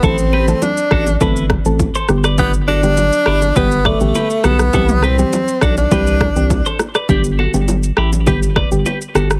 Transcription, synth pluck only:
\new Staff \with { instrumentName = "Synth pluck" } { \time 4/4 \key g \major \tempo 4 = 102 <e a c' a'>8. <e a c' a'>16 r4 <e a c' a'>8 r16 <e a c' a'>16 r8 <d g b g'>8 | r8. <d g b g'>16 r4 <d g b g'>8 r16 <d g b g'>16 r8 <d g b g'>8 | <e g c' g'>8. <e g c' g'>16 r4 <e g c' g'>8 r16 <e g c' g'>16 r4 | <d g b g'>8. <d g b g'>16 r4 <d g b g'>8 r16 <d g b g'>16 r8 <d g b g'>8 | }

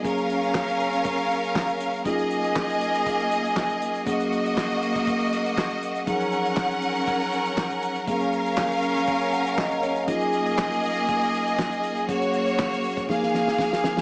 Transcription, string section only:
\new Staff \with { instrumentName = "String section" } { \time 4/4 \key ees \minor \tempo 4 = 120 <des' bes' f''>1 | <bes aes' ees''>1 | <bes ges' ees''>1 | <des' bes' ges''>1 |
<des' bes' f''>1 | <bes aes' ees''>1 | <bes ges' des''>2 <bes aes' f''>2 | }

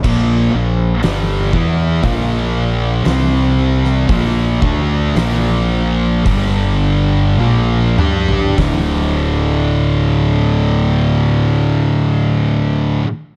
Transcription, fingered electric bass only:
\new Staff \with { instrumentName = "Fingered electric bass" } { \clef bass \time 4/4 \key d \minor \tempo 4 = 54 bes,,8 bes,,8 g,,8 e,8 bes,,4 c,4 | bes,,8 d,8 bes,,4 g,,4 bes,,8 g,8 | d,,1 | }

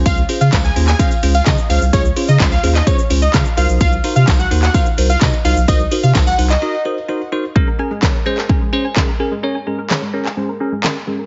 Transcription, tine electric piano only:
\new Staff \with { instrumentName = "Tine electric piano" } { \time 4/4 \key bes \minor \tempo 4 = 128 <des' f' aes' c''>8 <des' f' aes' c''>16 r16 <des' f' aes' c''>16 r16 <des' f' aes' c''>16 r16 <des' f' aes' c''>16 r16 <des' f' aes' c''>16 r16 <des' f' aes' c''>16 r16 <des' f' aes' c''>16 r16 | <des' f' aes' des''>16 r16 <des' f' aes' c''>16 r16 <des' f' aes' c''>16 r16 <des' f' aes' c''>16 r16 <des' f' aes' c''>16 r16 <des' f' aes' c''>16 r16 <des' f' aes' c''>16 r16 <ees' ges' bes' c''>8~ | <ees' ges' bes' c''>8 <ees' ges' bes' c''>16 r16 <ees' ges' bes' c''>16 r16 <ees' ges' bes' c''>16 r16 <ees' ges' bes' c''>16 r16 <ees' ges' bes' c''>16 r16 <ees' ges' bes' c''>16 r16 <ees' ges' bes' c''>16 r16 | <ees' ges' bes' c''>16 r16 <ees' ges' bes' c''>16 r16 <ees' ges' bes' c''>16 r16 <ees' ges' bes' c''>16 r16 <ees' ges' bes' ees''>16 r16 <ees' ges' bes' c''>16 r16 <ees' ges' bes' c''>16 r16 <ees' ges' bes' c''>16 r16 |
<des' aes' bes'>16 r16 <des' aes' bes'>16 r16 <des' aes' des''>16 r16 <des' aes' c''>16 r16 <des' aes' bes'>16 r16 <des' aes' c''>16 r16 <des' aes' bes'>16 r16 <des' aes' bes'>16 r16 | <des' aes' des''>16 r16 <des' aes' bes'>16 r16 <des' aes' des''>16 r16 <des' aes' bes'>16 r16 <des' aes' c''>16 r16 <des' aes' bes'>16 r16 <des' aes' bes'>16 r16 <des' aes' bes'>16 r16 | }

